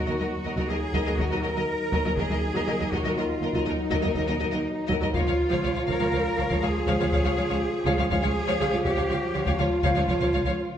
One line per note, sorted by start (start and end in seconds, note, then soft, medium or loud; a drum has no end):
0.00 2.01 F#3 medium
0.00 2.01 D#4 medium
0.00 0.69 F#4 medium
0.06 0.13 D#2 soft
0.06 0.12 F#3 soft
0.06 0.14 A#4 soft
0.06 0.11 D#5 soft
0.19 0.25 D#2 medium
0.19 0.25 F#3 medium
0.19 0.25 A#4 medium
0.19 0.24 D#5 medium
0.44 0.50 D#2 soft
0.44 0.50 F#3 soft
0.44 0.51 A#4 soft
0.44 0.50 D#5 soft
0.56 0.62 D#2 medium
0.56 0.61 F#3 medium
0.56 0.63 A#4 medium
0.56 0.62 D#5 medium
0.56 taiko medium
0.69 0.75 D#2 soft
0.69 0.74 F#3 soft
0.69 1.19 G#4 medium
0.69 0.76 A#4 soft
0.69 0.75 D#5 soft
0.94 1.00 D#2 medium
0.94 0.99 F#3 medium
0.94 1.00 A#4 medium
0.94 0.99 D#5 medium
0.94 taiko medium
1.06 1.12 D#2 soft
1.06 1.11 F#3 medium
1.06 1.11 A#4 soft
1.06 1.12 D#5 soft
1.18 1.24 D#2 medium
1.18 1.23 F#3 medium
1.18 1.44 F#4 medium
1.18 1.25 A#4 medium
1.18 1.24 D#5 medium
1.18 taiko medium
1.31 1.37 D#2 soft
1.31 1.36 F#3 soft
1.31 1.36 A#4 soft
1.31 1.37 D#5 medium
1.43 1.49 D#2 soft
1.43 1.48 F#3 soft
1.43 1.48 A#4 soft
1.43 2.18 A#4 medium
1.43 1.48 D#5 soft
1.56 1.61 D#2 medium
1.56 1.61 F#3 medium
1.56 1.61 A#4 medium
1.56 1.61 D#5 medium
1.92 1.98 D#2 medium
1.92 1.98 F#3 medium
1.92 1.99 A#4 medium
1.92 1.98 D#5 medium
1.92 taiko medium
2.05 2.10 D#2 soft
2.05 2.10 F#3 medium
2.05 2.11 A#4 soft
2.05 2.10 D#5 medium
2.17 2.23 D#2 medium
2.17 2.22 F#3 medium
2.17 5.11 F#3 medium
2.17 5.11 D#4 medium
2.17 2.90 G#4 medium
2.17 2.24 A#4 medium
2.17 2.24 D#5 medium
2.17 taiko medium
2.30 2.35 D#2 soft
2.30 2.35 F#3 soft
2.30 2.37 A#4 soft
2.30 2.36 D#5 soft
2.54 2.61 D#2 medium
2.54 2.59 F#3 medium
2.54 2.61 A#4 medium
2.54 2.60 D#5 medium
2.67 2.73 D#2 medium
2.67 2.72 F#3 soft
2.67 2.74 A#4 soft
2.67 2.72 D#5 soft
2.80 2.85 D#2 soft
2.80 2.85 F#3 soft
2.80 2.87 A#4 soft
2.80 2.85 D#5 soft
2.92 2.98 D#2 medium
2.92 2.97 F#3 medium
2.92 3.17 F#4 medium
2.92 3.00 A#4 medium
2.92 2.97 D#5 medium
2.92 taiko medium
3.04 3.09 D#2 soft
3.04 3.09 F#3 soft
3.04 3.12 A#4 soft
3.04 3.10 D#5 soft
3.16 3.22 D#2 medium
3.16 3.21 F#3 medium
3.16 3.67 F4 medium
3.16 3.24 A#4 medium
3.16 3.22 D#5 medium
3.41 3.46 D#2 soft
3.41 3.47 F#3 soft
3.41 3.49 A#4 soft
3.41 3.47 D#5 soft
3.53 3.58 D#2 medium
3.53 3.59 F#3 medium
3.53 3.59 D#5 medium
3.53 taiko medium
3.57 3.62 A#4 medium
3.65 3.71 D#2 soft
3.65 3.71 F#3 soft
3.65 4.88 D#4 medium
3.65 3.73 A#4 medium
3.65 3.71 D#5 soft
3.90 3.96 D#2 medium
3.90 3.96 F#3 medium
3.90 3.98 A#4 medium
3.90 3.96 D#5 medium
3.90 taiko medium
4.02 4.08 D#2 medium
4.02 4.07 F#3 soft
4.02 4.08 D#5 soft
4.07 4.11 A#4 soft
4.14 4.20 D#2 medium
4.14 4.20 F#3 medium
4.14 4.21 D#5 medium
4.14 taiko medium
4.19 4.23 A#4 medium
4.26 4.33 D#2 soft
4.26 4.32 F#3 medium
4.26 4.35 A#4 soft
4.26 4.34 D#5 medium
4.40 4.45 D#2 soft
4.40 4.45 F#3 soft
4.40 4.47 A#4 medium
4.40 4.45 D#5 medium
4.51 4.58 D#2 medium
4.51 4.57 F#3 medium
4.51 4.59 A#4 medium
4.51 4.57 D#5 medium
4.87 4.95 D#2 medium
4.87 4.93 F#3 medium
4.87 4.93 D#5 medium
4.87 taiko medium
4.92 4.97 A#4 medium
5.00 5.07 D#2 medium
5.00 5.06 F#3 medium
5.00 5.08 A#4 medium
5.00 5.07 D#5 medium
5.13 5.20 C#2 medium
5.13 5.18 F3 medium
5.13 8.07 F3 medium
5.13 8.07 F4 medium
5.13 5.85 F4 medium
5.13 5.19 F5 medium
5.13 taiko medium
5.17 5.22 C#5 medium
5.25 5.32 C#2 medium
5.25 5.30 F3 soft
5.25 5.32 F5 soft
5.29 5.34 C#5 soft
5.50 5.57 C#2 medium
5.50 5.55 F3 medium
5.50 5.58 C#5 medium
5.50 5.55 F5 medium
5.62 5.69 C#2 medium
5.62 5.67 F3 soft
5.62 5.69 C#5 medium
5.62 5.69 F5 medium
5.75 5.81 C#2 soft
5.75 5.81 F3 soft
5.75 5.82 C#5 soft
5.75 5.80 F5 medium
5.87 5.93 C#2 medium
5.87 5.94 F3 medium
5.87 6.63 A#4 medium
5.87 5.95 C#5 medium
5.87 5.93 F5 medium
5.87 taiko medium
6.00 6.06 C#2 soft
6.00 6.06 F3 soft
6.00 6.07 C#5 soft
6.00 6.05 F5 soft
6.12 6.18 C#2 medium
6.12 6.17 F3 medium
6.12 6.20 C#5 medium
6.12 6.17 F5 medium
6.37 6.43 C#2 medium
6.37 6.42 F3 medium
6.37 6.44 C#5 medium
6.37 6.42 F5 soft
6.48 6.55 C#2 medium
6.48 6.55 F3 medium
6.48 6.57 C#5 medium
6.48 6.54 F5 medium
6.48 taiko medium
6.61 6.67 C#2 medium
6.61 6.68 F3 medium
6.61 8.10 G#4 medium
6.61 6.68 C#5 soft
6.61 6.66 F5 soft
6.87 6.92 C#2 medium
6.87 6.93 F3 medium
6.87 6.93 C#5 medium
6.87 6.92 F5 medium
6.87 taiko medium
7.00 7.05 C#2 medium
7.00 7.05 F3 soft
7.00 7.05 C#5 soft
7.00 7.05 F5 medium
7.12 7.17 C#2 medium
7.12 7.17 F3 medium
7.12 7.18 C#5 medium
7.12 7.17 F5 medium
7.12 taiko medium
7.24 7.29 C#2 medium
7.24 7.29 F3 medium
7.24 7.31 C#5 soft
7.24 7.29 F5 medium
7.36 7.41 C#2 medium
7.36 7.43 F3 soft
7.36 7.43 C#5 medium
7.36 7.42 F5 soft
7.49 7.54 C#2 medium
7.49 7.55 F3 medium
7.49 7.54 C#5 medium
7.49 7.54 F5 medium
7.85 7.90 C#2 medium
7.85 7.91 F3 medium
7.85 7.91 C#5 medium
7.85 7.91 F5 medium
7.85 taiko medium
7.98 8.03 C#2 medium
7.98 8.03 F3 medium
7.98 8.04 C#5 medium
7.98 8.04 F5 medium
8.10 8.15 C#2 medium
8.10 8.16 F3 medium
8.10 10.78 F3 medium
8.10 10.78 F4 medium
8.10 8.84 G#4 medium
8.10 8.16 C#5 medium
8.10 8.16 F5 medium
8.10 taiko medium
8.22 8.28 C#2 medium
8.22 8.28 F3 medium
8.22 8.28 C#5 medium
8.22 8.27 F5 medium
8.47 8.53 C#2 medium
8.47 8.53 F3 medium
8.47 8.53 C#5 medium
8.47 8.53 F5 medium
8.60 8.65 C#2 medium
8.60 8.66 F3 medium
8.60 8.65 C#5 medium
8.60 8.66 F5 medium
8.72 8.77 C#2 soft
8.72 8.78 F3 soft
8.72 8.77 C#5 soft
8.72 8.78 F5 soft
8.84 8.90 C#2 medium
8.84 8.90 F3 medium
8.84 9.58 G4 medium
8.84 8.90 C#5 medium
8.84 8.91 F5 medium
8.84 taiko medium
8.96 9.02 C#2 medium
8.96 9.02 F3 medium
8.96 9.01 C#5 soft
8.96 9.03 F5 medium
9.09 9.14 C#2 medium
9.09 9.14 F3 medium
9.09 9.14 C#5 medium
9.09 9.15 F5 medium
9.34 9.40 C#2 medium
9.34 9.40 F3 soft
9.34 9.39 C#5 medium
9.34 9.39 F5 soft
9.46 9.52 C#2 medium
9.46 9.52 F3 medium
9.46 9.51 C#5 medium
9.46 9.51 F5 medium
9.46 taiko medium
9.58 9.64 C#2 medium
9.58 9.65 F3 soft
9.58 10.78 F4 medium
9.58 9.65 C#5 medium
9.58 9.64 F5 medium
9.83 9.88 C#2 medium
9.83 9.90 F3 medium
9.83 9.89 C#5 medium
9.83 9.88 F5 medium
9.83 taiko medium
9.95 10.00 C#2 medium
9.95 10.02 F3 medium
9.95 10.02 C#5 medium
9.95 10.00 F5 medium
10.08 10.13 C#2 medium
10.08 10.14 F3 medium
10.08 10.14 C#5 medium
10.08 10.13 F5 medium
10.08 taiko medium
10.20 10.26 C#2 medium
10.20 10.28 F3 medium
10.20 10.27 C#5 soft
10.20 10.26 F5 medium
10.33 10.38 C#2 medium
10.33 10.41 F3 medium
10.33 10.39 C#5 medium
10.33 10.38 F5 medium
10.45 10.50 C#2 medium
10.45 10.52 F3 medium
10.45 10.51 C#5 medium
10.45 10.51 F5 medium